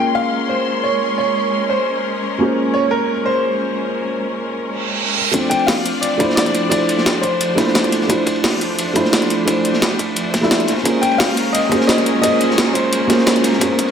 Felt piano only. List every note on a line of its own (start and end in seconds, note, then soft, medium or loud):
0.00 2.37 A#3 medium
0.00 2.38 C#4 medium
0.00 2.39 F4 medium
0.00 2.39 G#4 medium
0.00 2.40 A#4 medium
2.38 5.13 A#3 medium
2.38 5.14 C#4 medium
2.38 5.15 F4 medium
2.38 5.15 G#4 medium
2.43 5.16 C5 medium
5.31 6.16 A3 medium
5.31 6.18 C4 medium
5.31 6.17 D4 medium
5.31 6.19 F4 medium
5.36 6.19 C5 medium
6.17 6.68 A3 medium
6.17 6.69 D4 medium
6.17 6.70 E4 medium
6.17 6.70 F4 medium
6.23 6.71 C5 medium
6.69 7.54 A3 medium
6.69 7.55 D4 medium
6.69 7.56 E4 medium
6.69 7.57 F4 medium
6.74 7.57 C5 medium
7.55 8.06 A3 medium
7.55 8.07 D4 medium
7.55 8.08 E4 medium
7.55 8.08 F4 medium
7.60 8.09 C5 loud
8.07 8.92 A3 medium
8.07 8.93 D4 medium
8.07 8.94 E4 medium
8.07 8.95 F4 medium
8.12 8.95 C5 medium
8.93 9.44 A3 medium
8.93 9.45 D4 medium
8.93 9.46 E4 medium
8.93 9.46 F4 medium
8.99 9.47 C5 loud
9.45 10.31 A3 medium
9.45 10.31 D4 medium
9.45 10.32 E4 medium
9.45 10.33 F4 medium
9.50 10.33 C5 medium
10.41 10.67 A3 medium
10.41 10.67 D4 medium
10.41 10.67 E4 medium
10.41 10.68 F4 medium
10.41 10.68 E5 loud
10.83 11.68 A#3 medium
10.83 11.69 C#4 medium
10.83 11.70 F4 medium
10.83 11.70 G#4 medium
10.88 11.71 C5 medium
11.69 12.19 A#3 medium
11.69 12.21 C#4 medium
11.69 12.21 F4 medium
11.69 12.22 G#4 medium
11.74 12.23 C5 loud
12.21 13.06 A#3 medium
12.21 13.07 C#4 medium
12.21 13.08 F4 medium
12.21 13.08 G#4 medium
12.26 13.09 C5 medium
13.07 13.57 A#3 medium
13.07 13.59 C#4 medium
13.07 13.59 F4 medium
13.07 13.60 G#4 medium
13.12 13.61 C5 loud
13.59 13.91 A#3 medium
13.59 13.91 C#4 medium
13.59 13.91 F4 medium
13.59 13.91 G#4 medium
13.64 13.91 C5 medium